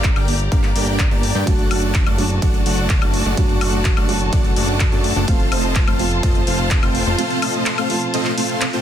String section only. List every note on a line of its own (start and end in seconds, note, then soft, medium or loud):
0.00 1.43 G4 medium
0.00 1.43 A#4 medium
0.00 5.24 D5 medium
0.00 1.43 A#5 medium
1.47 5.24 F#4 medium
1.47 8.81 A4 medium
1.47 8.81 A5 medium
5.28 8.81 F4 medium
5.28 8.81 C5 medium